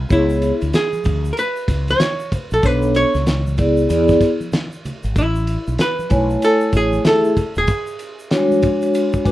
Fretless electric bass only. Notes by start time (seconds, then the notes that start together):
0.11 C#2
0.62 D2
1.06 D2
1.68 C#2
2.52 A#1
2.64 B1
3.14 C#2
3.90 E2
5.04 G#1
5.16 A1
5.67 B1
6.11 B1
6.73 A1
7.57 D#1